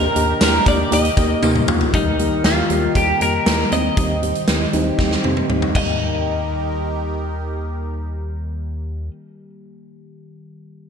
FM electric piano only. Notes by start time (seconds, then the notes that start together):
0.15 A#3 D4 G4
0.40 A#3 D4 G4
0.66 A#3 D4 G4
0.91 A#3 D#4 G4
1.17 A#3 D#4 G4
1.42 A#3 D#4 G4
1.68 A#3 D#4 F4
1.93 D#3 G3 A#3 G4
2.19 D#3 G3 A#3 G4
2.44 D#3 G3 A#3 G4
2.69 D#3 G3 A#3 G4
2.95 D#3 G3 A#3 G4
3.20 D#3 G3 A#3 G4
3.46 D#3 G3 A#3 G4
3.71 D#3 G3 A#3 C4
3.97 D#3 G3 C4 G4
4.22 D#3 G3 C4 G4
4.47 D#3 G3 C4 G4
4.73 D#3 G3 C4 D#4
4.98 D#3 G3 C4 G4
5.24 D#3 G3 C4 G4
5.49 D#3 G3 C4 G4
5.73 D#3 G3 A#3
5.77 G4